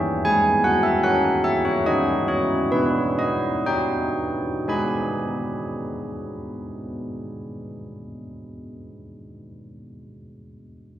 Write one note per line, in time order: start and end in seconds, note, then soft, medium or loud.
0.00 0.99 G#4 soft
0.00 0.21 E5 medium
0.25 0.88 G#3 medium
0.25 0.63 G#5 medium
0.64 0.84 F#5 medium
0.83 1.03 E5 medium
1.03 1.69 C#4 medium
1.03 1.82 A#4 soft
1.03 1.43 F#5 medium
1.44 1.65 E5 medium
1.65 1.86 C#5 medium
1.86 2.56 D#4 medium
1.86 2.71 B4 soft
1.86 2.27 D#5 medium
2.28 2.71 C#5 medium
2.71 3.47 B3 medium
2.71 3.17 B4 medium
3.19 3.65 D#5 medium
3.66 4.49 D#4 medium
3.66 4.66 C#5 soft
3.66 4.66 G5 medium
4.68 8.99 G#3 soft
4.68 8.99 D#4 soft
4.68 8.99 B4 soft
4.68 9.00 D#5 soft
4.68 9.00 G#5 soft
4.68 9.00 B5 medium